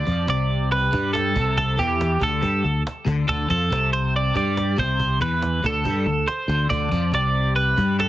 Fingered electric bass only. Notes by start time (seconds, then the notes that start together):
0.07 F2
0.27 C2
0.93 G2
1.36 C2
1.79 E2
2.21 D2
2.42 G2
2.64 D2
3.06 D2
3.28 D2
3.50 F2
3.70 C2
4.36 G2
4.78 C2
5.21 E2
5.64 D2
5.85 G2
6.06 D2
6.48 D2
6.71 D2
6.92 F2
7.12 C2
7.78 G2